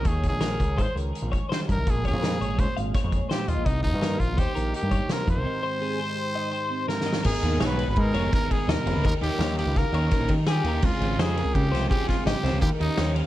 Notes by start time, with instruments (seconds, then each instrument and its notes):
0.04 picked electric bass D#2, clean electric guitar D#3 C#5, kick, closed hi-hat
0.08 trumpet G#4
0.23 clean electric guitar G#3, kick, closed hi-hat
0.28 trumpet G#4
0.33 picked electric bass A#1
0.41 clean electric guitar C#4 A#4, snare, closed hi-hat
0.60 picked electric bass C#2, clean electric guitar C#4, kick, closed hi-hat
0.76 picked electric bass G#2, clean electric guitar F4 C5, kick, closed hi-hat
0.82 trumpet C5
0.86 clean electric guitar G#4
0.95 picked electric bass C#2, clean electric guitar G#4 A#4, closed hi-hat
1.13 clean electric guitar G#4, closed hi-hat
1.22 picked electric bass A#1
1.32 clean electric guitar C#4 C#5, kick, closed hi-hat
1.49 clean electric guitar D#3 C5, trumpet C5, snare, closed hi-hat
1.66 picked electric bass G2, clean electric guitar G#3 A#4, kick, closed hi-hat
1.71 trumpet A#4
1.78 picked electric bass C2
1.85 picked electric bass A#1, clean electric guitar A#2, kick, closed hi-hat
1.90 trumpet G#4
2.03 clean electric guitar F3 C#5, trumpet G#4, kick, closed hi-hat
2.13 picked electric bass F2
2.22 clean electric guitar G#3 A#4, snare, closed hi-hat
2.40 picked electric bass G#1, clean electric guitar C#5, closed hi-hat
2.59 picked electric bass C#2, clean electric guitar G#4, trumpet C5, kick, closed hi-hat
2.77 picked electric bass G#1, clean electric guitar F5, closed hi-hat
2.94 clean electric guitar G#4 C#5, kick, snare, closed hi-hat
3.04 picked electric bass F2
3.11 clean electric guitar G#3, kick, closed hi-hat
3.29 clean electric guitar A#2 C5, trumpet G4, snare, closed hi-hat
3.47 picked electric bass D#2, clean electric guitar F3 D#5, trumpet F4, closed hi-hat
3.57 picked electric bass A#1
3.65 picked electric bass C2, clean electric guitar C3 D#5, trumpet D#4, kick, closed hi-hat
3.82 clean electric guitar D#3, trumpet D#4, kick, closed hi-hat
3.94 picked electric bass G2
4.02 clean electric guitar A#3 A#4, snare, closed hi-hat
4.18 picked electric bass A#1, clean electric guitar C4, trumpet F4, kick, closed hi-hat
4.27 clean electric guitar D#4
4.37 picked electric bass D#2, clean electric guitar D#4 C5, trumpet G4, kick, closed hi-hat
4.53 picked electric bass A#1, clean electric guitar D#4 A#4, closed hi-hat
4.73 clean electric guitar D#4, trumpet G4, closed hi-hat
4.83 picked electric bass G2
4.90 clean electric guitar G#3 C#5, kick, closed hi-hat
4.98 clean electric guitar A#3
5.07 clean electric guitar C3 C5, snare, closed hi-hat
5.13 trumpet A#4
5.24 picked electric bass F2, clean electric guitar A#2 A#4, kick, closed hi-hat
5.30 trumpet C5
5.37 picked electric bass C2
5.42 clean electric guitar G#2 D#3 C4 D#4 G4
5.62 clean electric guitar D#3 C5
5.80 clean electric guitar C4 G#4
6.00 clean electric guitar C5
6.10 clean electric guitar D#4
6.16 clean electric guitar G4
6.35 clean electric guitar D#4 D#5
6.52 clean electric guitar G4 C5
6.70 clean electric guitar C4
6.87 clean electric guitar G#2 A#4, trumpet A#4, snare
7.01 snare
7.06 clean electric guitar D#3 D#5
7.13 snare
7.23 picked electric bass G#1, clean electric guitar G#2 D#3 B3 D#4 A#4, trumpet G#4, kick, crash
7.43 picked electric bass D#2, overdriven electric guitar G#3 B3 D#4 G#4, clean electric guitar B3, ride
7.60 picked electric bass B1, overdriven electric guitar G#3 B3 D#4 G#4, clean electric guitar D#4 C#5, snare, ride
7.65 trumpet B4
7.77 clean electric guitar G#4 B4, ride
7.88 picked electric bass G#1, trumpet B4
7.96 picked electric bass G#2, clean electric guitar D#4, trumpet A#4, kick, ride
8.14 picked electric bass F1, overdriven electric guitar G#3 B3 D#4 G#4, clean electric guitar B3 C#5, ride
8.32 clean electric guitar D#3 A#4, overdriven electric guitar G#3 B3 D#4 G#4, trumpet A#4, kick, snare, ride
8.51 clean electric guitar B3, trumpet G#4, kick, ride
8.68 picked electric bass D#2, clean electric guitar B2 D#5, trumpet A#4, snare, ride
8.86 picked electric bass F1, clean electric guitar C#3 B4, overdriven electric guitar G#3 B3 D#4 G#4, ride
8.96 picked electric bass D2
9.03 picked electric bass D#2, clean electric guitar D#3 A#4, trumpet A#4, kick, ride
9.21 picked electric bass D#2, overdriven electric guitar D#3 A#3 C#4 G4, clean electric guitar D#4, trumpet G4, ride
9.39 picked electric bass D#2, overdriven electric guitar D#3 A#3 C#4 G4, clean electric guitar D#4 C#5, snare, ride
9.58 clean electric guitar D#4 F5, trumpet G4, ride
9.66 picked electric bass C#2
9.76 picked electric bass C#2, clean electric guitar G4, trumpet A#4, kick, snare, ride
9.93 picked electric bass D#2, overdriven electric guitar D#3 A#3 C#4 G4, clean electric guitar G4 C#5, ride
10.10 overdriven electric guitar D#3 A#3 C#4 G4, clean electric guitar D#4 A#4, kick, snare, ride
10.20 picked electric bass A#1
10.28 picked electric bass D#3, clean electric guitar G4, kick, ride
10.46 clean electric guitar F3 G#4, trumpet G4, snare, ride
10.64 picked electric bass D#2, clean electric guitar D#3 A#4, overdriven electric guitar D#3 A#3 C#4 G4, ride
10.82 picked electric bass C#2, clean electric guitar C#3 G#3 C4 G#4, trumpet F4, kick, crash
11.00 picked electric bass G#1, overdriven electric guitar F3 G#3 C#4 F4, clean electric guitar C4, ride
11.18 picked electric bass F2, overdriven electric guitar F3 G#3 C#4 F4, clean electric guitar F4 C5, trumpet G#4, snare, ride
11.37 clean electric guitar F4 A#4, ride
11.44 picked electric bass C#2
11.54 picked electric bass C#3, clean electric guitar F4, trumpet G4, kick, ride
11.71 picked electric bass C2, clean electric guitar C4 C5, overdriven electric guitar C#4 F4, snare, ride
11.76 overdriven electric guitar F3 G#3
11.89 overdriven electric guitar F3 G#3 C#4 F4, clean electric guitar G#3 G#4, trumpet G4, kick, ride
12.08 clean electric guitar C4, trumpet F4, kick, snare, ride
12.24 picked electric bass G#1, clean electric guitar C#3 D#5, trumpet G4, snare, ride
12.43 picked electric bass C2, overdriven electric guitar F3 G#3 C#4 F4, clean electric guitar C4 C5, snare, ride
12.53 picked electric bass C#2
12.61 picked electric bass D#2, clean electric guitar D#3 A#4, trumpet G4, kick, ride
12.79 picked electric bass D#2, overdriven electric guitar D#3 A#3 C#4 G4, trumpet D#4, clean electric guitar G4, ride
12.97 picked electric bass D#2, overdriven electric guitar D#3 A#3 C#4 G4, clean electric guitar C5 C#5, snare, ride
13.15 clean electric guitar C5 F5, ride